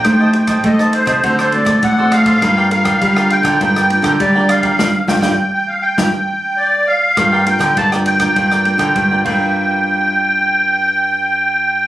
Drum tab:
CC |----------------|----------------|----------------|--------------x-|
RD |x-xxx-xxx-xxx-xx|x-xxx-xxx-xxx-xx|----------------|x-xxx-xxx-xxx---|
SD |r--r-r-r-r-r--r-|r--r-r-r-r-r--r-|o-oo----o-------|r--r-r-r-r-r----|
BD |o--oo--oo--oo--o|o--oo--oo--oo--o|o-oo----o-------|o--oo--oo--oo-o-|

CC |----------------|
RD |----------------|
SD |----------------|
BD |----------------|